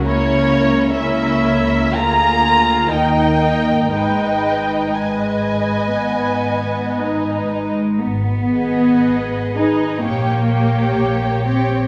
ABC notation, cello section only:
X:1
M:4/4
L:1/8
Q:1/4=60
K:G#m
V:1 name="Cello section" clef=bass
C,4 =D,2 ^D,2 | G,,6- G,, G, | B,3 D _B,3 ^B, |]